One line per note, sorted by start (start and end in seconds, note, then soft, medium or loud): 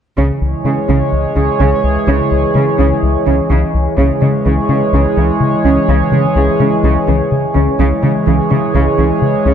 0.17 0.32 C#2 medium
0.17 0.25 C#3 soft
0.17 0.32 C#3 medium
0.17 3.94 E3 medium
0.17 3.94 G#3 medium
0.17 3.94 G#4 medium
0.17 3.94 C#5 medium
0.41 0.56 C#2 soft
0.65 0.79 C#3 soft
0.65 0.73 C#3 soft
0.65 0.79 G#3 soft
0.89 1.03 C#2 medium
0.89 0.97 C#3 soft
0.89 1.03 C#3 medium
1.12 1.27 C#2 soft
1.36 1.50 C#2 soft
1.36 1.44 C#3 soft
1.36 1.51 C#4 soft
1.60 1.74 C#2 medium
1.60 1.74 C#3 medium
1.60 1.68 C#3 medium
1.84 1.98 C#2 medium
2.07 2.22 C#2 medium
2.07 2.15 C#3 medium
2.07 2.22 C#3 medium
2.31 2.46 C#2 medium
2.55 2.63 C#3 soft
2.55 2.69 C#3 medium
2.55 2.69 G#3 medium
2.79 2.93 C#2 medium
2.79 2.87 C#3 medium
2.79 2.93 C#3 medium
3.03 3.17 C#2 medium
3.26 3.41 C#2 soft
3.26 3.34 C#3 soft
3.26 3.41 C#4 soft
3.50 3.64 C#2 medium
3.50 3.65 C#3 medium
3.50 3.58 C#3 medium
3.74 3.89 C#2 medium
3.97 4.12 C#2 medium
3.97 4.12 C#3 medium
3.97 4.06 C#3 soft
3.97 7.75 E3 medium
3.97 7.75 G#3 medium
3.97 7.75 G#4 medium
3.97 7.75 C#5 medium
4.22 4.30 C#3 soft
4.22 4.36 C#3 soft
4.22 4.36 G#3 soft
4.45 4.60 C#2 soft
4.45 4.53 C#3 soft
4.45 4.60 E3 medium
4.69 4.77 C#3 soft
4.69 4.83 C#3 soft
4.69 4.84 G#3 soft
4.93 5.07 C#2 medium
4.93 5.01 C#3 soft
4.93 5.08 C#3 medium
5.17 5.31 C#2 soft
5.17 5.25 C#3 soft
5.17 5.32 E3 soft
5.41 5.55 C#3 medium
5.65 5.79 C#2 soft
5.65 5.73 C#3 soft
5.65 5.79 C#4 soft
5.88 6.03 C#2 medium
5.88 5.96 C#3 soft
5.88 6.03 C#3 medium
6.12 6.26 C#3 soft
6.12 6.20 C#3 soft
6.12 6.27 G#3 soft
6.36 6.50 C#2 medium
6.36 6.44 C#3 soft
6.36 6.51 E3 medium
6.60 6.74 C#3 soft
6.60 6.68 C#3 soft
6.60 6.75 G#3 soft
6.83 6.98 C#2 medium
6.83 6.92 C#3 soft
6.83 6.98 C#3 medium
7.08 7.22 C#2 soft
7.08 7.16 C#3 soft
7.08 7.23 E3 soft
7.32 7.46 C#3 medium
7.55 7.69 C#2 soft
7.55 7.63 C#3 soft
7.55 7.70 C#4 medium
7.79 7.93 C#2 medium
7.79 7.87 C#3 medium
7.79 7.94 C#3 medium
7.79 9.54 E3 medium
7.79 9.54 G#3 medium
7.79 9.54 G#4 medium
7.79 9.54 C#5 medium
8.03 8.11 C#3 soft
8.03 8.17 C#3 soft
8.03 8.18 G#3 soft
8.27 8.41 C#2 medium
8.27 8.35 C#3 soft
8.27 8.41 E3 medium
8.51 8.59 C#3 soft
8.51 8.65 C#3 soft
8.51 8.65 G#3 soft
8.74 8.89 C#2 medium
8.74 8.89 C#3 medium
8.74 8.83 C#3 medium
8.98 9.12 C#2 soft
8.98 9.06 C#3 soft
8.98 9.12 E3 soft
9.22 9.36 C#3 medium
9.45 9.54 C#2 medium
9.45 9.54 C#3 soft
9.45 9.54 C#4 medium